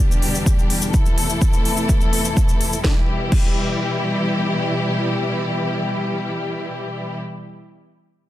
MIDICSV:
0, 0, Header, 1, 3, 480
1, 0, Start_track
1, 0, Key_signature, 1, "minor"
1, 0, Tempo, 476190
1, 947, Time_signature, 4, 2, 24, 8
1, 8360, End_track
2, 0, Start_track
2, 0, Title_t, "String section"
2, 0, Program_c, 0, 48
2, 0, Note_on_c, 0, 40, 76
2, 0, Note_on_c, 0, 47, 67
2, 0, Note_on_c, 0, 50, 68
2, 0, Note_on_c, 0, 55, 68
2, 0, Note_on_c, 0, 62, 71
2, 0, Note_on_c, 0, 67, 83
2, 906, Note_off_c, 0, 67, 0
2, 909, Note_off_c, 0, 55, 0
2, 928, Note_off_c, 0, 47, 0
2, 928, Note_off_c, 0, 50, 0
2, 928, Note_off_c, 0, 62, 0
2, 944, Note_on_c, 0, 52, 65
2, 944, Note_on_c, 0, 57, 66
2, 944, Note_on_c, 0, 64, 66
2, 945, Note_on_c, 0, 48, 65
2, 945, Note_on_c, 0, 69, 83
2, 2829, Note_off_c, 0, 40, 0
2, 2846, Note_off_c, 0, 48, 0
2, 2846, Note_off_c, 0, 52, 0
2, 2846, Note_off_c, 0, 57, 0
2, 2846, Note_off_c, 0, 64, 0
2, 2847, Note_off_c, 0, 69, 0
2, 2864, Note_on_c, 0, 47, 71
2, 2864, Note_on_c, 0, 52, 67
2, 2865, Note_on_c, 0, 55, 65
2, 2865, Note_on_c, 0, 64, 65
2, 2865, Note_on_c, 0, 67, 79
2, 7225, Note_off_c, 0, 47, 0
2, 7225, Note_off_c, 0, 52, 0
2, 7225, Note_off_c, 0, 67, 0
2, 7226, Note_off_c, 0, 55, 0
2, 7226, Note_off_c, 0, 64, 0
2, 8360, End_track
3, 0, Start_track
3, 0, Title_t, "Drums"
3, 116, Note_on_c, 9, 69, 41
3, 217, Note_off_c, 9, 69, 0
3, 225, Note_on_c, 9, 46, 104
3, 326, Note_off_c, 9, 46, 0
3, 350, Note_on_c, 9, 69, 77
3, 451, Note_off_c, 9, 69, 0
3, 467, Note_on_c, 9, 36, 118
3, 469, Note_on_c, 9, 69, 75
3, 567, Note_off_c, 9, 36, 0
3, 570, Note_off_c, 9, 69, 0
3, 593, Note_on_c, 9, 69, 40
3, 693, Note_off_c, 9, 69, 0
3, 706, Note_on_c, 9, 46, 91
3, 807, Note_off_c, 9, 46, 0
3, 824, Note_on_c, 9, 69, 81
3, 924, Note_off_c, 9, 69, 0
3, 942, Note_on_c, 9, 69, 62
3, 947, Note_on_c, 9, 36, 117
3, 1043, Note_off_c, 9, 69, 0
3, 1048, Note_off_c, 9, 36, 0
3, 1066, Note_on_c, 9, 69, 40
3, 1167, Note_off_c, 9, 69, 0
3, 1186, Note_on_c, 9, 46, 108
3, 1287, Note_off_c, 9, 46, 0
3, 1306, Note_on_c, 9, 69, 77
3, 1406, Note_off_c, 9, 69, 0
3, 1426, Note_on_c, 9, 69, 63
3, 1427, Note_on_c, 9, 36, 118
3, 1527, Note_off_c, 9, 36, 0
3, 1527, Note_off_c, 9, 69, 0
3, 1543, Note_on_c, 9, 69, 41
3, 1644, Note_off_c, 9, 69, 0
3, 1666, Note_on_c, 9, 46, 92
3, 1767, Note_off_c, 9, 46, 0
3, 1782, Note_on_c, 9, 69, 81
3, 1883, Note_off_c, 9, 69, 0
3, 1905, Note_on_c, 9, 69, 59
3, 1907, Note_on_c, 9, 36, 111
3, 2006, Note_off_c, 9, 69, 0
3, 2008, Note_off_c, 9, 36, 0
3, 2024, Note_on_c, 9, 69, 35
3, 2125, Note_off_c, 9, 69, 0
3, 2146, Note_on_c, 9, 46, 100
3, 2247, Note_off_c, 9, 46, 0
3, 2265, Note_on_c, 9, 69, 76
3, 2366, Note_off_c, 9, 69, 0
3, 2386, Note_on_c, 9, 69, 68
3, 2387, Note_on_c, 9, 36, 116
3, 2487, Note_off_c, 9, 36, 0
3, 2487, Note_off_c, 9, 69, 0
3, 2506, Note_on_c, 9, 69, 35
3, 2607, Note_off_c, 9, 69, 0
3, 2627, Note_on_c, 9, 46, 91
3, 2727, Note_off_c, 9, 46, 0
3, 2747, Note_on_c, 9, 69, 77
3, 2848, Note_off_c, 9, 69, 0
3, 2866, Note_on_c, 9, 36, 109
3, 2866, Note_on_c, 9, 38, 74
3, 2967, Note_off_c, 9, 36, 0
3, 2967, Note_off_c, 9, 38, 0
3, 3346, Note_on_c, 9, 49, 76
3, 3347, Note_on_c, 9, 36, 110
3, 3447, Note_off_c, 9, 36, 0
3, 3447, Note_off_c, 9, 49, 0
3, 8360, End_track
0, 0, End_of_file